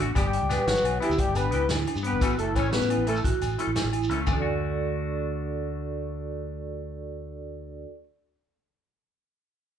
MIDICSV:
0, 0, Header, 1, 8, 480
1, 0, Start_track
1, 0, Key_signature, 2, "major"
1, 0, Tempo, 344432
1, 212, Time_signature, 12, 3, 24, 8
1, 13629, End_track
2, 0, Start_track
2, 0, Title_t, "Vibraphone"
2, 0, Program_c, 0, 11
2, 0, Note_on_c, 0, 62, 67
2, 208, Note_off_c, 0, 62, 0
2, 220, Note_on_c, 0, 67, 71
2, 670, Note_off_c, 0, 67, 0
2, 696, Note_on_c, 0, 71, 74
2, 1147, Note_off_c, 0, 71, 0
2, 1421, Note_on_c, 0, 67, 64
2, 1868, Note_off_c, 0, 67, 0
2, 1891, Note_on_c, 0, 62, 64
2, 2115, Note_off_c, 0, 62, 0
2, 2141, Note_on_c, 0, 64, 64
2, 2588, Note_off_c, 0, 64, 0
2, 2615, Note_on_c, 0, 62, 68
2, 3064, Note_off_c, 0, 62, 0
2, 3087, Note_on_c, 0, 66, 70
2, 3312, Note_off_c, 0, 66, 0
2, 3322, Note_on_c, 0, 64, 63
2, 3776, Note_off_c, 0, 64, 0
2, 3813, Note_on_c, 0, 61, 74
2, 4034, Note_off_c, 0, 61, 0
2, 4045, Note_on_c, 0, 64, 60
2, 4498, Note_off_c, 0, 64, 0
2, 4523, Note_on_c, 0, 66, 77
2, 4976, Note_off_c, 0, 66, 0
2, 5004, Note_on_c, 0, 64, 66
2, 5226, Note_off_c, 0, 64, 0
2, 5242, Note_on_c, 0, 64, 64
2, 5696, Note_off_c, 0, 64, 0
2, 5725, Note_on_c, 0, 61, 63
2, 5949, Note_off_c, 0, 61, 0
2, 5959, Note_on_c, 0, 62, 48
2, 6007, Note_on_c, 0, 66, 46
2, 6067, Note_on_c, 0, 69, 52
2, 6126, Note_on_c, 0, 74, 49
2, 10943, Note_off_c, 0, 62, 0
2, 10990, Note_off_c, 0, 66, 0
2, 11050, Note_off_c, 0, 69, 0
2, 11109, Note_off_c, 0, 74, 0
2, 13629, End_track
3, 0, Start_track
3, 0, Title_t, "Horn section"
3, 0, Program_c, 1, 61
3, 214, Note_on_c, 1, 55, 66
3, 214, Note_on_c, 1, 67, 72
3, 880, Note_off_c, 1, 55, 0
3, 880, Note_off_c, 1, 67, 0
3, 928, Note_on_c, 1, 54, 68
3, 928, Note_on_c, 1, 66, 74
3, 1400, Note_on_c, 1, 52, 71
3, 1400, Note_on_c, 1, 64, 78
3, 1406, Note_off_c, 1, 54, 0
3, 1406, Note_off_c, 1, 66, 0
3, 1625, Note_off_c, 1, 52, 0
3, 1625, Note_off_c, 1, 64, 0
3, 1642, Note_on_c, 1, 55, 65
3, 1642, Note_on_c, 1, 67, 71
3, 1883, Note_off_c, 1, 55, 0
3, 1883, Note_off_c, 1, 67, 0
3, 1896, Note_on_c, 1, 59, 72
3, 1896, Note_on_c, 1, 71, 78
3, 2369, Note_off_c, 1, 59, 0
3, 2369, Note_off_c, 1, 71, 0
3, 2854, Note_on_c, 1, 59, 72
3, 2854, Note_on_c, 1, 71, 78
3, 3293, Note_off_c, 1, 59, 0
3, 3293, Note_off_c, 1, 71, 0
3, 3314, Note_on_c, 1, 57, 72
3, 3314, Note_on_c, 1, 69, 79
3, 3540, Note_off_c, 1, 57, 0
3, 3540, Note_off_c, 1, 69, 0
3, 3561, Note_on_c, 1, 61, 76
3, 3561, Note_on_c, 1, 73, 83
3, 3780, Note_on_c, 1, 59, 69
3, 3780, Note_on_c, 1, 71, 76
3, 3800, Note_off_c, 1, 61, 0
3, 3800, Note_off_c, 1, 73, 0
3, 4235, Note_off_c, 1, 59, 0
3, 4235, Note_off_c, 1, 71, 0
3, 4287, Note_on_c, 1, 57, 80
3, 4287, Note_on_c, 1, 69, 86
3, 4428, Note_off_c, 1, 57, 0
3, 4428, Note_off_c, 1, 69, 0
3, 13629, End_track
4, 0, Start_track
4, 0, Title_t, "Clean electric guitar"
4, 0, Program_c, 2, 27
4, 4, Note_on_c, 2, 62, 68
4, 30, Note_on_c, 2, 66, 74
4, 132, Note_off_c, 2, 62, 0
4, 145, Note_off_c, 2, 66, 0
4, 213, Note_on_c, 2, 59, 63
4, 225, Note_on_c, 2, 62, 68
4, 248, Note_on_c, 2, 67, 74
4, 356, Note_off_c, 2, 59, 0
4, 362, Note_off_c, 2, 62, 0
4, 373, Note_off_c, 2, 67, 0
4, 688, Note_on_c, 2, 59, 51
4, 711, Note_on_c, 2, 62, 60
4, 832, Note_off_c, 2, 59, 0
4, 844, Note_off_c, 2, 62, 0
4, 1399, Note_on_c, 2, 59, 54
4, 1427, Note_on_c, 2, 62, 53
4, 1451, Note_on_c, 2, 67, 50
4, 1546, Note_off_c, 2, 59, 0
4, 1560, Note_off_c, 2, 62, 0
4, 1572, Note_off_c, 2, 67, 0
4, 2108, Note_on_c, 2, 59, 56
4, 2142, Note_on_c, 2, 62, 57
4, 2160, Note_on_c, 2, 67, 59
4, 2259, Note_off_c, 2, 59, 0
4, 2277, Note_off_c, 2, 62, 0
4, 2286, Note_off_c, 2, 67, 0
4, 2830, Note_on_c, 2, 59, 50
4, 2881, Note_on_c, 2, 67, 52
4, 2979, Note_off_c, 2, 59, 0
4, 3005, Note_off_c, 2, 67, 0
4, 3085, Note_on_c, 2, 52, 63
4, 3104, Note_on_c, 2, 57, 64
4, 3116, Note_on_c, 2, 61, 66
4, 3128, Note_on_c, 2, 69, 65
4, 3226, Note_off_c, 2, 52, 0
4, 3236, Note_off_c, 2, 57, 0
4, 3242, Note_off_c, 2, 61, 0
4, 3248, Note_off_c, 2, 69, 0
4, 3569, Note_on_c, 2, 52, 50
4, 3592, Note_on_c, 2, 57, 51
4, 3608, Note_on_c, 2, 61, 55
4, 3615, Note_on_c, 2, 69, 51
4, 3708, Note_off_c, 2, 52, 0
4, 3720, Note_off_c, 2, 57, 0
4, 3728, Note_off_c, 2, 61, 0
4, 3731, Note_off_c, 2, 69, 0
4, 4287, Note_on_c, 2, 52, 47
4, 4308, Note_on_c, 2, 57, 53
4, 4319, Note_on_c, 2, 61, 50
4, 4426, Note_off_c, 2, 52, 0
4, 4437, Note_off_c, 2, 57, 0
4, 4443, Note_off_c, 2, 61, 0
4, 4997, Note_on_c, 2, 52, 53
4, 5015, Note_on_c, 2, 57, 58
4, 5021, Note_on_c, 2, 61, 66
4, 5043, Note_on_c, 2, 69, 65
4, 5141, Note_off_c, 2, 52, 0
4, 5150, Note_off_c, 2, 57, 0
4, 5153, Note_off_c, 2, 61, 0
4, 5164, Note_off_c, 2, 69, 0
4, 5715, Note_on_c, 2, 52, 49
4, 5735, Note_on_c, 2, 57, 54
4, 5754, Note_on_c, 2, 61, 63
4, 5766, Note_on_c, 2, 69, 59
4, 5853, Note_off_c, 2, 57, 0
4, 5860, Note_off_c, 2, 52, 0
4, 5869, Note_on_c, 2, 57, 58
4, 5879, Note_off_c, 2, 61, 0
4, 5886, Note_off_c, 2, 69, 0
4, 6033, Note_on_c, 2, 62, 68
4, 6159, Note_on_c, 2, 66, 72
4, 10908, Note_off_c, 2, 57, 0
4, 11072, Note_off_c, 2, 62, 0
4, 11198, Note_off_c, 2, 66, 0
4, 13629, End_track
5, 0, Start_track
5, 0, Title_t, "Fingered electric bass"
5, 0, Program_c, 3, 33
5, 0, Note_on_c, 3, 33, 83
5, 176, Note_off_c, 3, 33, 0
5, 221, Note_on_c, 3, 31, 85
5, 521, Note_off_c, 3, 31, 0
5, 583, Note_on_c, 3, 37, 73
5, 780, Note_off_c, 3, 37, 0
5, 934, Note_on_c, 3, 31, 87
5, 1033, Note_off_c, 3, 31, 0
5, 1164, Note_on_c, 3, 35, 82
5, 1368, Note_off_c, 3, 35, 0
5, 1526, Note_on_c, 3, 38, 88
5, 1627, Note_off_c, 3, 38, 0
5, 1774, Note_on_c, 3, 31, 75
5, 2137, Note_off_c, 3, 31, 0
5, 2137, Note_on_c, 3, 37, 80
5, 2334, Note_off_c, 3, 37, 0
5, 2368, Note_on_c, 3, 38, 94
5, 2568, Note_off_c, 3, 38, 0
5, 2723, Note_on_c, 3, 43, 73
5, 2964, Note_on_c, 3, 31, 72
5, 2985, Note_off_c, 3, 43, 0
5, 3064, Note_off_c, 3, 31, 0
5, 3082, Note_on_c, 3, 33, 88
5, 3284, Note_off_c, 3, 33, 0
5, 3318, Note_on_c, 3, 30, 69
5, 3558, Note_off_c, 3, 30, 0
5, 3558, Note_on_c, 3, 33, 86
5, 3863, Note_off_c, 3, 33, 0
5, 3919, Note_on_c, 3, 45, 72
5, 4122, Note_off_c, 3, 45, 0
5, 4148, Note_on_c, 3, 33, 82
5, 4457, Note_off_c, 3, 33, 0
5, 4524, Note_on_c, 3, 33, 88
5, 4623, Note_off_c, 3, 33, 0
5, 4751, Note_on_c, 3, 33, 65
5, 4957, Note_off_c, 3, 33, 0
5, 5117, Note_on_c, 3, 33, 70
5, 5219, Note_off_c, 3, 33, 0
5, 5354, Note_on_c, 3, 33, 69
5, 5703, Note_off_c, 3, 33, 0
5, 5703, Note_on_c, 3, 37, 72
5, 5912, Note_off_c, 3, 37, 0
5, 5949, Note_on_c, 3, 38, 77
5, 10932, Note_off_c, 3, 38, 0
5, 13629, End_track
6, 0, Start_track
6, 0, Title_t, "Muted clean electric guitar strokes"
6, 732, Note_on_c, 9, 29, 64
6, 871, Note_off_c, 9, 29, 0
6, 13629, End_track
7, 0, Start_track
7, 0, Title_t, "Shekere"
7, 237, Note_on_c, 9, 82, 82
7, 377, Note_off_c, 9, 82, 0
7, 705, Note_on_c, 9, 82, 85
7, 845, Note_off_c, 9, 82, 0
7, 955, Note_on_c, 9, 82, 22
7, 1074, Note_off_c, 9, 82, 0
7, 1074, Note_on_c, 9, 82, 63
7, 1213, Note_off_c, 9, 82, 0
7, 1556, Note_on_c, 9, 82, 60
7, 1696, Note_off_c, 9, 82, 0
7, 1894, Note_on_c, 9, 82, 72
7, 2034, Note_off_c, 9, 82, 0
7, 2377, Note_on_c, 9, 82, 80
7, 2516, Note_off_c, 9, 82, 0
7, 2735, Note_on_c, 9, 82, 57
7, 2874, Note_off_c, 9, 82, 0
7, 3093, Note_on_c, 9, 82, 73
7, 3218, Note_off_c, 9, 82, 0
7, 3218, Note_on_c, 9, 82, 25
7, 3358, Note_off_c, 9, 82, 0
7, 3576, Note_on_c, 9, 82, 74
7, 3695, Note_off_c, 9, 82, 0
7, 3695, Note_on_c, 9, 82, 22
7, 3835, Note_off_c, 9, 82, 0
7, 3930, Note_on_c, 9, 82, 57
7, 4069, Note_off_c, 9, 82, 0
7, 4407, Note_on_c, 9, 82, 54
7, 4546, Note_off_c, 9, 82, 0
7, 4773, Note_on_c, 9, 82, 71
7, 4887, Note_off_c, 9, 82, 0
7, 4887, Note_on_c, 9, 82, 21
7, 5026, Note_off_c, 9, 82, 0
7, 5247, Note_on_c, 9, 82, 76
7, 5386, Note_off_c, 9, 82, 0
7, 5616, Note_on_c, 9, 82, 51
7, 5755, Note_off_c, 9, 82, 0
7, 5953, Note_on_c, 9, 82, 70
7, 6092, Note_off_c, 9, 82, 0
7, 13629, End_track
8, 0, Start_track
8, 0, Title_t, "Drums"
8, 104, Note_on_c, 9, 63, 55
8, 213, Note_on_c, 9, 68, 61
8, 222, Note_on_c, 9, 42, 70
8, 223, Note_on_c, 9, 36, 88
8, 243, Note_off_c, 9, 63, 0
8, 353, Note_off_c, 9, 68, 0
8, 361, Note_off_c, 9, 42, 0
8, 362, Note_off_c, 9, 36, 0
8, 461, Note_on_c, 9, 42, 46
8, 601, Note_off_c, 9, 42, 0
8, 702, Note_on_c, 9, 68, 61
8, 704, Note_on_c, 9, 38, 20
8, 704, Note_on_c, 9, 42, 40
8, 841, Note_off_c, 9, 68, 0
8, 843, Note_off_c, 9, 38, 0
8, 843, Note_off_c, 9, 42, 0
8, 940, Note_on_c, 9, 38, 86
8, 940, Note_on_c, 9, 42, 57
8, 1080, Note_off_c, 9, 38, 0
8, 1080, Note_off_c, 9, 42, 0
8, 1183, Note_on_c, 9, 42, 45
8, 1184, Note_on_c, 9, 68, 60
8, 1322, Note_off_c, 9, 42, 0
8, 1324, Note_off_c, 9, 68, 0
8, 1421, Note_on_c, 9, 42, 44
8, 1429, Note_on_c, 9, 68, 46
8, 1561, Note_off_c, 9, 42, 0
8, 1569, Note_off_c, 9, 68, 0
8, 1647, Note_on_c, 9, 42, 61
8, 1651, Note_on_c, 9, 36, 82
8, 1786, Note_off_c, 9, 42, 0
8, 1790, Note_off_c, 9, 36, 0
8, 1883, Note_on_c, 9, 42, 42
8, 1901, Note_on_c, 9, 68, 59
8, 2022, Note_off_c, 9, 42, 0
8, 2041, Note_off_c, 9, 68, 0
8, 2115, Note_on_c, 9, 42, 40
8, 2254, Note_off_c, 9, 42, 0
8, 2353, Note_on_c, 9, 38, 68
8, 2353, Note_on_c, 9, 42, 55
8, 2385, Note_on_c, 9, 68, 58
8, 2492, Note_off_c, 9, 38, 0
8, 2492, Note_off_c, 9, 42, 0
8, 2524, Note_off_c, 9, 68, 0
8, 2607, Note_on_c, 9, 42, 42
8, 2616, Note_on_c, 9, 68, 52
8, 2746, Note_off_c, 9, 42, 0
8, 2755, Note_off_c, 9, 68, 0
8, 2844, Note_on_c, 9, 42, 41
8, 2984, Note_off_c, 9, 42, 0
8, 3085, Note_on_c, 9, 36, 80
8, 3085, Note_on_c, 9, 42, 65
8, 3096, Note_on_c, 9, 68, 63
8, 3224, Note_off_c, 9, 42, 0
8, 3225, Note_off_c, 9, 36, 0
8, 3235, Note_off_c, 9, 68, 0
8, 3323, Note_on_c, 9, 42, 41
8, 3463, Note_off_c, 9, 42, 0
8, 3561, Note_on_c, 9, 36, 58
8, 3563, Note_on_c, 9, 42, 42
8, 3571, Note_on_c, 9, 68, 57
8, 3701, Note_off_c, 9, 36, 0
8, 3702, Note_off_c, 9, 42, 0
8, 3711, Note_off_c, 9, 68, 0
8, 3796, Note_on_c, 9, 38, 84
8, 3796, Note_on_c, 9, 42, 56
8, 3936, Note_off_c, 9, 38, 0
8, 3936, Note_off_c, 9, 42, 0
8, 4042, Note_on_c, 9, 42, 43
8, 4044, Note_on_c, 9, 68, 62
8, 4181, Note_off_c, 9, 42, 0
8, 4184, Note_off_c, 9, 68, 0
8, 4274, Note_on_c, 9, 68, 44
8, 4275, Note_on_c, 9, 42, 48
8, 4414, Note_off_c, 9, 68, 0
8, 4415, Note_off_c, 9, 42, 0
8, 4521, Note_on_c, 9, 36, 82
8, 4526, Note_on_c, 9, 42, 64
8, 4660, Note_off_c, 9, 36, 0
8, 4666, Note_off_c, 9, 42, 0
8, 4757, Note_on_c, 9, 42, 45
8, 4766, Note_on_c, 9, 68, 52
8, 4897, Note_off_c, 9, 42, 0
8, 4905, Note_off_c, 9, 68, 0
8, 4999, Note_on_c, 9, 42, 44
8, 5138, Note_off_c, 9, 42, 0
8, 5234, Note_on_c, 9, 38, 69
8, 5234, Note_on_c, 9, 42, 58
8, 5244, Note_on_c, 9, 68, 56
8, 5374, Note_off_c, 9, 38, 0
8, 5374, Note_off_c, 9, 42, 0
8, 5384, Note_off_c, 9, 68, 0
8, 5472, Note_on_c, 9, 68, 57
8, 5478, Note_on_c, 9, 42, 41
8, 5612, Note_off_c, 9, 68, 0
8, 5617, Note_off_c, 9, 42, 0
8, 5720, Note_on_c, 9, 42, 42
8, 5859, Note_off_c, 9, 42, 0
8, 5947, Note_on_c, 9, 68, 85
8, 5951, Note_on_c, 9, 43, 70
8, 5953, Note_on_c, 9, 36, 72
8, 6087, Note_off_c, 9, 68, 0
8, 6090, Note_off_c, 9, 43, 0
8, 6093, Note_off_c, 9, 36, 0
8, 13629, End_track
0, 0, End_of_file